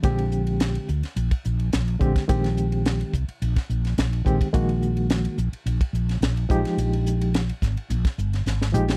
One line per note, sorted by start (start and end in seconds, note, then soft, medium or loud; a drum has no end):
0.03 0.76 A#1 medium
0.03 0.86 D3 medium
0.03 0.87 G#3 medium
0.03 0.87 C4 medium
0.03 0.87 G4 medium
0.03 kick loud
0.03 hi-hat pedal medium
0.03 ride medium
0.18 ride medium
0.32 hi-hat pedal medium
0.47 ride medium
0.60 snare medium
0.60 hi-hat pedal medium
0.60 ride medium
0.75 ride medium
0.88 1.01 D2 medium
0.88 hi-hat pedal medium
1.03 muted fretless electric bass stroke soft
1.03 snare soft
1.03 ride medium
1.16 1.29 A#1 medium
1.16 hi-hat pedal medium
1.16 ride medium
1.31 kick medium
1.31 ride medium
1.45 1.69 A#1 medium
1.45 hi-hat pedal medium
1.59 ride medium
1.73 1.97 A#1 medium
1.73 snare medium
1.73 hi-hat pedal medium
1.73 ride medium
1.88 ride soft
1.99 2.13 A#1 medium
1.99 2.21 D3 medium
1.99 2.22 G#3 medium
1.99 2.22 C4 medium
1.99 2.22 G4 medium
1.99 kick medium
1.99 hi-hat pedal medium
2.16 kick medium
2.16 snare soft
2.16 ride medium
2.28 3.01 A#1 medium
2.28 3.11 D#3 medium
2.28 3.12 G#3 medium
2.28 3.12 C4 medium
2.28 3.12 G4 medium
2.28 kick loud
2.28 hi-hat pedal medium
2.28 ride medium
2.44 snare soft
2.44 ride medium
2.57 hi-hat pedal medium
2.72 ride soft
2.85 snare loud
2.85 hi-hat pedal medium
2.85 ride medium
3.01 ride medium
3.13 3.26 C2 medium
3.13 kick medium
3.13 hi-hat pedal medium
3.28 muted fretless electric bass stroke soft
3.28 ride medium
3.42 3.54 A#1 medium
3.42 hi-hat pedal medium
3.42 ride medium
3.56 kick medium
3.56 snare soft
3.56 ride medium
3.69 3.93 A#1 medium
3.69 hi-hat pedal medium
3.85 snare soft
3.85 ride soft
3.98 4.22 A#1 medium
3.98 snare medium
3.98 hi-hat pedal medium
3.98 ride medium
4.13 ride medium
4.25 4.38 A#1 medium
4.25 4.46 D#3 medium
4.25 4.47 G#3 medium
4.25 4.47 C4 medium
4.25 4.47 G4 medium
4.25 kick medium
4.25 hi-hat pedal medium
4.41 kick medium
4.41 ride medium
4.53 5.26 A#1 medium
4.53 5.36 D#3 medium
4.53 5.36 G#3 medium
4.53 5.37 A#3 medium
4.53 5.37 F#4 medium
4.53 kick loud
4.53 hi-hat pedal medium
4.53 ride medium
4.69 ride medium
4.82 hi-hat pedal medium
4.97 ride medium
5.10 snare loud
5.10 hi-hat pedal medium
5.10 ride medium
5.25 ride medium
5.38 5.51 A#1 medium
5.38 hi-hat pedal medium
5.53 ride medium
5.66 5.78 A#1 medium
5.66 hi-hat pedal medium
5.66 ride medium
5.81 kick medium
5.81 ride medium
5.93 6.17 A#1 medium
5.93 hi-hat pedal medium
6.09 snare soft
6.09 ride medium
6.21 6.45 A#1 medium
6.21 snare medium
6.21 hi-hat pedal medium
6.21 ride medium
6.37 ride medium
6.49 6.63 A#1 medium
6.49 7.40 F3 medium
6.49 7.40 G#3 medium
6.49 7.40 D#4 medium
6.49 7.41 G4 medium
6.49 kick loud
6.49 hi-hat pedal medium
6.65 snare soft
6.65 ride medium
6.77 7.50 A#1 medium
6.77 hi-hat pedal medium
6.77 ride medium
6.93 ride medium
7.06 hi-hat pedal medium
7.21 ride medium
7.34 snare loud
7.34 hi-hat pedal medium
7.34 ride medium
7.49 ride medium
7.62 7.75 G#1 medium
7.62 kick medium
7.62 snare soft
7.62 hi-hat pedal medium
7.76 muted fretless electric bass stroke soft
7.76 ride medium
7.90 8.03 A#1 loud
7.90 hi-hat pedal medium
7.90 ride medium
8.05 kick medium
8.05 snare soft
8.05 ride medium
8.18 8.43 G1 medium
8.18 hi-hat pedal medium
8.33 snare soft
8.33 ride medium
8.46 8.71 G#1 medium
8.46 snare medium
8.46 hi-hat pedal medium
8.62 snare medium
8.73 8.97 A#1 medium
8.73 8.95 F3 medium
8.73 8.95 G#3 medium
8.73 8.95 D#4 medium
8.73 8.95 G4 medium
8.73 hi-hat pedal medium
8.73 mid tom medium
8.89 snare medium